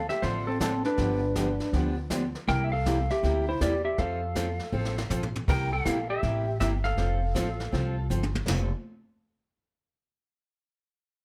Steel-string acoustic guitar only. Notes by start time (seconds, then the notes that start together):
0.23 D3 F3 C4 D4 A4
0.60 D3 F3 C4 D4 A4
0.97 D3 F3 B3 D4 G4
1.35 D3 F3 B3 D4 G4
1.73 D3 F3 B3 D4 G4
2.10 D3 F3 B3 D4 G4
2.47 C3 G3 A#3 E4 G4
2.86 C3 G3 A#3 E4 G4
3.23 C3 G3 A#3 E4 G4
3.61 C3 G3 A#3 E4 G4
3.98 F3 C4 F4 A4
4.36 F3 C4 F4 A4
4.72 F3 C4 F4 A4
5.10 F3 C4 F4 A4
5.48 C3 G3 A#3 E4 G4
5.85 C3 G3 A#3 E4 G4
6.22 C3 G3 A#3 E4 G4
6.60 C3 G3 A#3 E4 G4
6.96 F3 C4 F4 A4
7.35 F3 C4 F4 A4
7.72 F3 C4 F4 A4
8.10 F3 C4 F4 A4
8.47 F3 C4 F4 A4